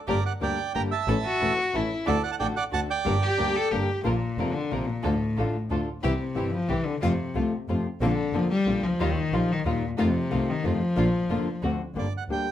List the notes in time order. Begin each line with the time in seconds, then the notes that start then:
0.08 G1 D3 G3 A#3 D4 G4 A#4 D5
0.25 D5 F#5
0.40 D2 D3 G3 A#3 D4 G4 A#4 D5 G5
0.74 G1 D3 G3 A#3 D4 G4 A#4 G5 A#5
0.91 E5 A5
1.07 A1 E3 A3 C#4 E4 A4
1.25 F#4
1.40 E1 E3 A3 C#4 E4 A4
1.73 A1 E3 A3 C#4 E4 A4
2.06 D2 D3 A3 D4 F#4 A4 D5
2.23 D5 F#5
2.31 F#5 A5
2.39 A1 D3 A3 D4 F#4 A4 D5 G5
2.56 D5 F#5
2.71 D2 D3 A3 D4 F#4 A4 F#5 A5
2.90 D5 G5
3.05 G1 D3 G3 A#3 D4 G4 A#4
3.23 G4
3.38 D2 D3 G3 A#3 D4 G4 A#4
3.56 A4
3.71 G1 D3 G3 A#3 D4 G4 A#4
4.03 A#1 A#2 D3 A#3 D4 F4 A#4
4.38 F1 C3 D3 A#3 D4 F4 A#4
4.54 D3
4.70 A#1 C3 D3 A#3 D4 F4 A#4
4.89 A#2
5.03 D2 A2 D3 A3 D4 F4 A4
5.37 A1 D3 A3 D4 F4 A4
5.70 D2 D3 A3 D4 F4 A4
6.03 C2 C3 E3 G3 C4 E4 G4
6.35 G1 C3 E3 G3 C4 E4 G4
6.51 F3
6.68 C2 C3 E3 G3 C4 E4 G4
6.85 D3
7.01 F2 C3 F3 A3 C4 F4
7.34 C2 C3 F3 A3 C4 F4
7.68 F2 C3 F3 A3 C4 F4
8.01 A#1 D3 A#3 C4 D4 F4
8.33 F1 D3 F3 A#3 C4 D4 F4
8.50 G3
8.66 A#1 D3 A#3 C4 D4 F4
8.83 C#2 F3
8.99 D#2 D#3 G3 D#4 F4
9.32 A#1 D#3 F3 G3 D#4 F4
9.52 D#3
9.65 D#2 A#2 D#3 G3 D#4 F4
9.82 D#2
9.98 F2 C3 D#3 A3 C4 D#4 F4
10.31 C2 C3 D#3 A3 C4 D#4 F4
10.50 D#3
10.63 F2 C3 D#3 F3 A3 C4 D#4 F4
10.96 A#1 D3 A#3 D4 F4
11.29 F1 D3 A#3 D4 F4
11.63 D2 D3 A3 C4 D4 F#4
11.95 G1 D3 G3 A#3 D4 G4 D5
12.17 F#5
12.29 D2 D3 G3 A#3 D4 G4 G5